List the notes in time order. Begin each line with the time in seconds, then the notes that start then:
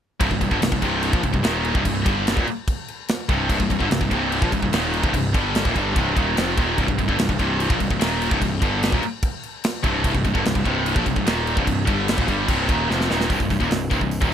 0.20 C1 C2 G2, kick, crash
0.31 C1 C2 G2, kick
0.41 C1 C2 G2, kick, crash
0.51 G1 G2 D3, kick
0.62 C1 C2 G2, snare, crash
0.72 C1 C2 G2, kick
0.82 C1 C2 G2 C3, kick, crash
1.03 crash
1.12 A#1 A#2 F3, kick
1.23 C1 C2 G2, kick, crash
1.33 C1 C2 G2, kick
1.43 D#1 D#2 A#2 D#3, snare, crash
1.65 crash
1.74 C1 C2 G2, kick
1.84 C1 C2 G2, kick, crash
2.05 G1 G2 D3 G3, kick, crash
2.27 snare, crash
2.35 D#1 D#2 A#2, kick
2.46 muted distorted electric guitar stroke, muted picked electric bass stroke, crash
2.68 kick, crash
2.88 crash
3.08 snare, crash
3.29 C1 C2 G2 C3, kick, crash
3.49 C1 C2 G2, kick, crash
3.59 C1 C2 G2, kick
3.70 C1 C2 G2, kick, crash
3.79 G1 G2 D3, kick
3.90 C1 C2 G2, snare, crash
4.00 C1 C2 G2, kick
4.11 C1 C2 G2 C3, kick, crash
4.32 crash
4.42 A#1 A#2 F3, kick
4.52 C1 C2 G2, kick, crash
4.63 C1 C2 G2, kick
4.72 D#1 D#2 A#2 D#3, snare, crash
4.93 crash
5.03 C1 C2 G2, kick
5.14 C1 C2 G2, kick, crash
5.34 G1 G2 D3 G3, kick, crash
5.55 snare, crash
5.64 D#1 D#2 A#2, kick
5.74 G1 G2 D3 G3, kick, crash
5.94 C1 C2 G2 C3, kick, crash
6.15 D#1 D#2 A#2 D#3, kick, crash
6.35 F1 F2 C3 F3, snare, crash
6.57 D#1 D#2 A#2 D#3, kick, crash
6.77 C1 C2 G2, kick, crash
6.88 C1 C2 G2, kick
6.98 C1 C2 G2, kick, crash
7.08 G1 G2 D3, kick
7.18 C1 C2 G2, snare, crash
7.29 C1 C2 G2, kick
7.39 C1 C2 G2 C3, kick, crash
7.60 crash
7.69 A#1 A#2 F3, kick
7.80 C1 C2 G2, kick, crash
7.90 C1 C2 G2, kick
7.99 D#1 D#2 A#2 D#3, snare, crash
8.22 crash
8.30 C1 C2 G2, kick
8.41 C1 C2 G2, kick, crash
8.62 G1 G2 D3 G3, kick, crash
8.83 snare, crash
8.92 D#1 D#2 A#2, kick
9.02 muted distorted electric guitar stroke, muted picked electric bass stroke, crash
9.23 kick, crash
9.43 crash
9.64 snare, crash
9.83 C1 C2 G2 C3, kick, crash
10.04 C1 C2 G2, kick, crash
10.14 C1 C2 G2, kick
10.24 C1 C2 G2, kick, crash
10.34 G1 G2 D3, kick
10.45 C1 C2 G2, snare, crash
10.55 C1 C2 G2, kick
10.65 C1 C2 G2 C3, kick, crash
10.86 crash
10.95 A#1 A#2 F3, kick
11.06 C1 C2 G2, kick, crash
11.16 C1 C2 G2, kick
11.26 D#1 D#2 A#2 D#3, snare, crash
11.47 crash
11.56 C1 C2 G2, kick
11.67 C1 C2 G2, kick, crash
11.87 G1 G2 D3 G3, kick, crash
12.08 snare, crash
12.17 D#1 D#2 A#2, kick
12.28 G1 G2 D3 G3, kick, crash
12.48 C1 C2 G2 C3, kick, crash
12.68 D#1 D#2 A#2 D#3, kick, crash
12.89 F1 F2 C3 F3, snare
13.01 snare
13.09 D#1 D#2 A#2 D#3, snare
13.21 snare
13.29 C1 C2 G2, kick, open hi-hat
13.40 C1 C2 G2, kick
13.50 C1 C2 G2, kick, open hi-hat
13.60 D#1 D#2 A#2, kick
13.70 C1 C2 G2, snare, open hi-hat
13.90 C1 C2 G2, kick, open hi-hat
14.01 C1 C2 G2, kick
14.11 open hi-hat
14.21 D#1 D#2 A#2 D#3, kick